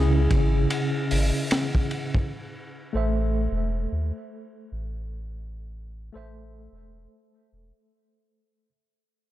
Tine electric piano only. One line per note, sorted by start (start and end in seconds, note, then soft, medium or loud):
0.00 2.28 C#3 medium
0.00 2.29 C#4 medium
0.00 2.30 E4 medium
0.00 2.30 G#4 loud
2.93 6.08 A3 medium
2.93 6.09 A4 medium
2.93 6.09 C5 medium
2.97 6.10 E5 medium
6.13 8.68 A3 medium
6.13 8.69 A4 medium
6.13 8.70 C5 medium
6.17 8.70 E5 medium